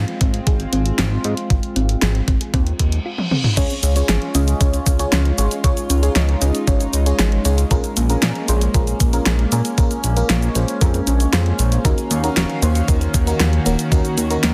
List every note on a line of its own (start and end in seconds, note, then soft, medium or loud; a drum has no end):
0.00 3.02 G#3 medium
0.00 3.02 C4 medium
0.00 3.02 F4 medium
0.08 closed hi-hat soft
0.21 0.40 G#1 medium
0.21 0.32 C4 medium
0.21 kick loud
0.21 closed hi-hat medium
0.34 closed hi-hat soft
0.47 0.66 G#1 medium
0.47 0.65 G#4 medium
0.47 kick loud
0.47 closed hi-hat medium
0.60 closed hi-hat soft
0.73 0.92 G#1 medium
0.73 0.97 C4 medium
0.73 closed hi-hat medium
0.86 closed hi-hat soft
0.98 1.18 G#1 loud
0.98 1.17 C4 medium
0.98 snare loud
0.98 closed hi-hat medium
1.24 1.34 G#2 medium
1.24 closed hi-hat medium
1.37 closed hi-hat medium
1.50 1.60 G#1 medium
1.50 1.61 F4 medium
1.50 kick loud
1.50 closed hi-hat medium
1.63 closed hi-hat soft
1.76 1.96 G#1 medium
1.76 1.87 C4 medium
1.76 closed hi-hat medium
1.89 closed hi-hat medium
2.02 2.21 G#1 loud
2.02 2.20 G#4 medium
2.02 snare loud
2.02 closed hi-hat medium
2.15 closed hi-hat soft
2.28 2.38 G#1 medium
2.28 2.52 C4 medium
2.28 kick loud
2.28 closed hi-hat medium
2.41 closed hi-hat medium
2.54 2.73 D#2 loud
2.54 2.72 C4 medium
2.54 kick loud
2.54 closed hi-hat medium
2.54 reverse cymbal medium
2.67 closed hi-hat soft
2.79 2.99 D#2 medium
2.79 kick medium
2.79 closed hi-hat medium
2.92 closed hi-hat medium
3.05 3.16 F4 medium
3.18 high tom soft
3.31 3.42 C4 medium
3.31 mid tom medium
3.44 mid tom medium
3.57 3.67 C#2 loud
3.57 11.81 G#3 medium
3.57 3.93 C#4 medium
3.57 3.75 C#4 medium
3.57 5.62 C#4 medium
3.57 3.93 F4 medium
3.57 7.67 F4 medium
3.57 3.93 G#4 medium
3.57 3.93 C#5 loud
3.57 kick loud
3.57 closed hi-hat medium
3.57 crash loud
3.57 shaker soft
3.70 closed hi-hat soft
3.70 shaker soft
3.83 4.02 C#2 loud
3.83 closed hi-hat medium
3.83 shaker medium
3.96 4.32 C#4 loud
3.96 4.32 F4 medium
3.96 4.32 G#4 medium
3.96 4.32 C#5 loud
3.96 closed hi-hat medium
3.96 shaker soft
4.09 4.19 G#1 medium
4.09 4.20 G#4 medium
4.09 snare loud
4.09 closed hi-hat medium
4.09 shaker soft
4.22 closed hi-hat soft
4.35 4.54 C#2 medium
4.35 4.46 C#4 medium
4.35 4.58 C#4 medium
4.35 4.58 F4 medium
4.35 4.58 G#4 medium
4.35 4.58 D#5 loud
4.35 closed hi-hat medium
4.35 shaker medium
4.48 closed hi-hat medium
4.48 shaker soft
4.61 4.80 C#2 medium
4.61 4.96 C#4 medium
4.61 4.96 F4 medium
4.61 4.96 G#4 medium
4.61 4.96 C#5 medium
4.61 4.79 C#5 medium
4.61 kick loud
4.61 closed hi-hat medium
4.61 shaker soft
4.74 closed hi-hat soft
4.74 shaker soft
4.86 5.06 C#2 medium
4.86 5.11 C#4 medium
4.86 kick loud
4.86 closed hi-hat medium
4.86 shaker medium
4.99 5.35 C#4 medium
4.99 5.35 F4 medium
4.99 5.35 G#4 medium
4.99 5.35 C#5 loud
4.99 closed hi-hat medium
4.99 shaker soft
5.12 5.32 C#2 loud
5.12 5.30 C#4 medium
5.12 snare loud
5.12 closed hi-hat medium
5.12 shaker soft
5.25 closed hi-hat soft
5.38 5.48 G#1 medium
5.38 5.46 C#4 loud
5.38 5.46 F4 medium
5.38 5.46 G#4 medium
5.38 5.46 C#5 loud
5.38 closed hi-hat medium
5.38 shaker medium
5.51 closed hi-hat medium
5.51 shaker soft
5.64 5.74 C#2 medium
5.64 6.00 C#4 medium
5.64 7.69 D#4 medium
5.64 6.00 F4 medium
5.64 5.75 G#4 medium
5.64 6.00 G#4 medium
5.64 6.00 C#5 loud
5.64 kick loud
5.64 closed hi-hat medium
5.64 shaker soft
5.77 closed hi-hat soft
5.77 shaker soft
5.90 6.09 C#2 medium
5.90 6.01 C#4 medium
5.90 closed hi-hat medium
5.90 shaker medium
6.03 6.38 C#4 loud
6.03 6.38 F4 medium
6.03 6.38 G#4 medium
6.03 6.38 C#5 loud
6.03 closed hi-hat medium
6.03 shaker soft
6.16 6.35 C#2 loud
6.16 6.34 C#5 medium
6.16 snare loud
6.16 closed hi-hat medium
6.16 shaker soft
6.29 closed hi-hat soft
6.42 6.51 C#2 medium
6.42 6.66 C#4 medium
6.42 6.64 C#4 medium
6.42 6.64 F4 medium
6.42 6.64 G#4 medium
6.42 6.64 D#5 loud
6.42 closed hi-hat medium
6.42 shaker medium
6.55 closed hi-hat medium
6.55 shaker soft
6.67 6.87 G#1 loud
6.67 6.85 C#4 medium
6.67 7.03 C#4 medium
6.67 7.03 F4 medium
6.67 7.03 G#4 medium
6.67 7.03 C#5 medium
6.67 kick loud
6.67 closed hi-hat medium
6.67 shaker soft
6.80 closed hi-hat soft
6.80 shaker soft
6.93 7.13 C#2 medium
6.93 closed hi-hat medium
6.93 shaker medium
7.06 7.42 C#4 medium
7.06 7.42 F4 medium
7.06 7.42 G#4 medium
7.06 7.42 C#5 loud
7.06 closed hi-hat medium
7.06 shaker soft
7.19 7.39 G#1 medium
7.19 7.30 G#4 medium
7.19 snare loud
7.19 closed hi-hat medium
7.19 shaker soft
7.32 closed hi-hat soft
7.45 7.65 C#2 loud
7.45 7.56 C#4 medium
7.45 7.53 C#4 loud
7.45 7.53 F4 medium
7.45 7.53 G#4 medium
7.45 7.53 C#5 loud
7.45 closed hi-hat medium
7.45 shaker medium
7.58 closed hi-hat medium
7.58 shaker soft
7.71 7.81 A#1 loud
7.71 11.81 A#3 medium
7.71 14.54 C#4 medium
7.71 8.07 C#4 loud
7.71 8.07 F4 medium
7.71 7.89 G#4 medium
7.71 8.07 G#4 medium
7.71 8.07 A#4 loud
7.71 kick loud
7.71 closed hi-hat medium
7.71 shaker soft
7.84 closed hi-hat soft
7.84 shaker soft
7.97 8.16 A#1 loud
7.97 8.21 A#3 medium
7.97 closed hi-hat medium
7.97 shaker medium
8.10 8.45 C#4 medium
8.10 8.45 F4 medium
8.10 8.45 G#4 medium
8.10 8.45 A#4 loud
8.10 closed hi-hat medium
8.10 shaker soft
8.22 8.32 A#2 medium
8.22 8.41 A#3 medium
8.22 snare loud
8.22 closed hi-hat medium
8.22 shaker soft
8.35 closed hi-hat soft
8.48 8.68 A#1 medium
8.48 8.71 C#4 medium
8.48 8.71 F4 medium
8.48 8.71 G#4 medium
8.48 8.71 C5 loud
8.48 closed hi-hat medium
8.48 shaker medium
8.61 closed hi-hat medium
8.61 shaker soft
8.74 8.94 A#1 medium
8.74 9.10 C#4 medium
8.74 8.85 F4 medium
8.74 9.10 F4 medium
8.74 9.10 G#4 medium
8.74 9.10 A#4 medium
8.74 kick loud
8.74 closed hi-hat medium
8.74 shaker soft
8.87 closed hi-hat soft
8.87 shaker soft
9.00 9.20 A#1 medium
9.00 9.11 A#3 medium
9.00 kick loud
9.00 closed hi-hat medium
9.00 shaker medium
9.13 9.49 C#4 medium
9.13 9.49 F4 medium
9.13 9.49 G#4 medium
9.13 9.49 A#4 loud
9.13 closed hi-hat medium
9.13 shaker soft
9.26 9.46 A#1 loud
9.26 9.44 G#4 medium
9.26 snare loud
9.26 closed hi-hat medium
9.26 shaker soft
9.39 closed hi-hat soft
9.52 9.62 A#2 medium
9.52 9.77 A#3 medium
9.52 9.60 C#4 loud
9.52 9.60 F4 medium
9.52 9.60 G#4 medium
9.52 9.60 A#4 loud
9.52 closed hi-hat medium
9.52 shaker medium
9.65 closed hi-hat medium
9.65 shaker soft
9.78 9.88 A#1 medium
9.78 9.96 A#3 medium
9.78 10.14 C#4 loud
9.78 10.14 F4 medium
9.78 10.14 G#4 medium
9.78 10.14 A#4 loud
9.78 kick loud
9.78 closed hi-hat medium
9.78 shaker soft
9.91 closed hi-hat soft
9.91 shaker soft
10.04 10.23 A#1 medium
10.04 closed hi-hat medium
10.04 shaker medium
10.17 10.52 C#4 medium
10.17 10.52 F4 medium
10.17 10.52 G#4 medium
10.17 10.52 A#4 loud
10.17 closed hi-hat medium
10.17 shaker soft
10.29 10.49 A#1 loud
10.29 10.40 F4 medium
10.29 snare loud
10.29 closed hi-hat medium
10.29 shaker soft
10.42 closed hi-hat soft
10.42 shaker soft
10.55 10.65 A#1 medium
10.55 10.66 A#3 medium
10.55 10.78 C#4 medium
10.55 10.78 F4 medium
10.55 10.78 G#4 medium
10.55 10.78 C5 loud
10.55 closed hi-hat medium
10.55 shaker medium
10.68 closed hi-hat medium
10.68 shaker soft
10.81 11.01 F2 loud
10.81 11.17 C#4 medium
10.81 11.17 F4 medium
10.81 10.99 G#4 medium
10.81 11.17 G#4 medium
10.81 11.17 A#4 medium
10.81 kick loud
10.81 closed hi-hat medium
10.81 shaker soft
10.94 closed hi-hat soft
10.94 shaker soft
11.07 11.27 A#1 medium
11.07 11.32 C#4 medium
11.07 closed hi-hat medium
11.07 shaker medium
11.20 closed hi-hat medium
11.20 shaker soft
11.33 11.53 F2 medium
11.33 11.82 C#4 loud
11.33 11.82 F4 medium
11.33 11.51 F4 medium
11.33 11.82 G#4 medium
11.33 11.82 C5 loud
11.33 snare loud
11.33 closed hi-hat medium
11.33 shaker soft
11.46 closed hi-hat soft
11.59 11.78 A#1 loud
11.59 closed hi-hat medium
11.59 shaker medium
11.72 closed hi-hat medium
11.72 shaker soft
11.85 11.95 D#2 loud
11.85 14.54 D#3 medium
11.85 14.54 A#3 medium
11.85 12.20 C#4 medium
11.85 12.20 D#4 medium
11.85 11.96 D#4 medium
11.85 14.54 F#4 medium
11.85 12.20 F#4 medium
11.85 12.20 A#4 loud
11.85 13.90 F5 medium
11.85 kick loud
11.85 closed hi-hat medium
11.85 shaker soft
11.98 closed hi-hat soft
11.98 shaker soft
12.11 12.30 D#2 loud
12.11 12.21 A#3 medium
12.11 closed hi-hat medium
12.11 shaker medium
12.24 12.59 C#4 loud
12.24 12.59 D#4 medium
12.24 12.59 F#4 medium
12.24 12.59 A#4 loud
12.24 closed hi-hat medium
12.24 shaker soft
12.36 12.46 D#1 medium
12.36 12.55 F#4 medium
12.36 snare loud
12.36 closed hi-hat medium
12.36 shaker soft
12.50 closed hi-hat soft
12.62 12.82 D#2 medium
12.62 12.87 A#3 medium
12.62 12.85 C#4 medium
12.62 12.85 D#4 medium
12.62 12.85 F#4 medium
12.62 12.85 C5 loud
12.62 closed hi-hat medium
12.62 shaker medium
12.75 closed hi-hat soft
12.75 shaker soft
12.88 13.08 D#2 medium
12.88 13.06 A#3 medium
12.88 13.24 C#4 medium
12.88 13.24 D#4 medium
12.88 13.24 F#4 medium
12.88 13.24 A#4 medium
12.88 kick loud
12.88 closed hi-hat medium
12.88 shaker soft
13.01 closed hi-hat soft
13.01 shaker soft
13.14 13.34 D#2 medium
13.14 kick loud
13.14 closed hi-hat medium
13.14 shaker medium
13.27 13.63 C#4 medium
13.27 13.63 D#4 medium
13.27 13.63 F#4 medium
13.27 13.63 A#4 loud
13.27 closed hi-hat soft
13.27 shaker soft
13.40 13.59 D#2 loud
13.40 13.51 D#4 medium
13.40 snare loud
13.40 closed hi-hat medium
13.40 shaker soft
13.53 closed hi-hat soft
13.66 13.76 D#1 medium
13.66 13.77 A#3 medium
13.66 13.74 C#4 loud
13.66 13.74 D#4 medium
13.66 13.74 F#4 medium
13.66 13.74 A#4 loud
13.66 closed hi-hat medium
13.66 shaker medium
13.79 closed hi-hat medium
13.79 shaker soft
13.92 14.01 D#2 medium
13.92 14.27 C#4 medium
13.92 14.54 D#4 medium
13.92 14.27 D#4 medium
13.92 14.10 F#4 medium
13.92 14.27 F#4 medium
13.92 14.27 A#4 loud
13.92 kick loud
13.92 closed hi-hat medium
13.92 shaker soft
14.05 closed hi-hat soft
14.05 shaker soft
14.18 14.37 D#2 medium
14.18 14.42 A#3 medium
14.18 closed hi-hat medium
14.18 shaker medium
14.30 14.54 C#4 loud
14.30 14.54 D#4 medium
14.30 14.54 F#4 medium
14.30 14.54 A#4 loud
14.30 closed hi-hat medium
14.30 shaker soft
14.43 14.54 D#2 loud
14.43 14.54 A#3 medium
14.43 snare loud
14.43 closed hi-hat medium
14.43 shaker soft